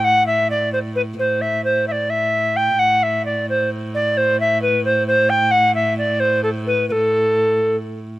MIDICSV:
0, 0, Header, 1, 3, 480
1, 0, Start_track
1, 0, Tempo, 456969
1, 39, Time_signature, 6, 3, 24, 8
1, 8607, End_track
2, 0, Start_track
2, 0, Title_t, "Recorder"
2, 0, Program_c, 0, 74
2, 43, Note_on_c, 0, 78, 95
2, 270, Note_off_c, 0, 78, 0
2, 277, Note_on_c, 0, 76, 84
2, 502, Note_off_c, 0, 76, 0
2, 527, Note_on_c, 0, 74, 84
2, 747, Note_off_c, 0, 74, 0
2, 766, Note_on_c, 0, 72, 86
2, 830, Note_off_c, 0, 72, 0
2, 1001, Note_on_c, 0, 71, 80
2, 1064, Note_off_c, 0, 71, 0
2, 1249, Note_on_c, 0, 72, 83
2, 1484, Note_on_c, 0, 76, 95
2, 1500, Note_off_c, 0, 72, 0
2, 1718, Note_off_c, 0, 76, 0
2, 1725, Note_on_c, 0, 72, 75
2, 1946, Note_off_c, 0, 72, 0
2, 1969, Note_on_c, 0, 76, 72
2, 2013, Note_on_c, 0, 74, 78
2, 2024, Note_off_c, 0, 76, 0
2, 2204, Note_on_c, 0, 76, 94
2, 2219, Note_off_c, 0, 74, 0
2, 2692, Note_on_c, 0, 79, 81
2, 2708, Note_off_c, 0, 76, 0
2, 2930, Note_on_c, 0, 78, 87
2, 2946, Note_off_c, 0, 79, 0
2, 3181, Note_on_c, 0, 76, 78
2, 3197, Note_off_c, 0, 78, 0
2, 3412, Note_off_c, 0, 76, 0
2, 3416, Note_on_c, 0, 74, 75
2, 3633, Note_off_c, 0, 74, 0
2, 3670, Note_on_c, 0, 72, 80
2, 3880, Note_off_c, 0, 72, 0
2, 4142, Note_on_c, 0, 74, 80
2, 4383, Note_on_c, 0, 72, 88
2, 4398, Note_off_c, 0, 74, 0
2, 4612, Note_off_c, 0, 72, 0
2, 4622, Note_on_c, 0, 76, 81
2, 4836, Note_off_c, 0, 76, 0
2, 4852, Note_on_c, 0, 71, 87
2, 5071, Note_off_c, 0, 71, 0
2, 5091, Note_on_c, 0, 72, 97
2, 5310, Note_off_c, 0, 72, 0
2, 5326, Note_on_c, 0, 72, 95
2, 5561, Note_on_c, 0, 79, 94
2, 5577, Note_off_c, 0, 72, 0
2, 5787, Note_on_c, 0, 78, 99
2, 5803, Note_off_c, 0, 79, 0
2, 6030, Note_off_c, 0, 78, 0
2, 6036, Note_on_c, 0, 76, 86
2, 6261, Note_off_c, 0, 76, 0
2, 6281, Note_on_c, 0, 74, 87
2, 6510, Note_on_c, 0, 72, 95
2, 6526, Note_off_c, 0, 74, 0
2, 6749, Note_off_c, 0, 72, 0
2, 6755, Note_on_c, 0, 69, 77
2, 6818, Note_off_c, 0, 69, 0
2, 7001, Note_on_c, 0, 71, 79
2, 7224, Note_off_c, 0, 71, 0
2, 7230, Note_on_c, 0, 71, 75
2, 7267, Note_on_c, 0, 69, 82
2, 7277, Note_off_c, 0, 71, 0
2, 8152, Note_off_c, 0, 69, 0
2, 8607, End_track
3, 0, Start_track
3, 0, Title_t, "Viola da gamba"
3, 0, Program_c, 1, 42
3, 0, Note_on_c, 1, 45, 60
3, 2918, Note_off_c, 1, 45, 0
3, 2924, Note_on_c, 1, 45, 66
3, 8607, Note_off_c, 1, 45, 0
3, 8607, End_track
0, 0, End_of_file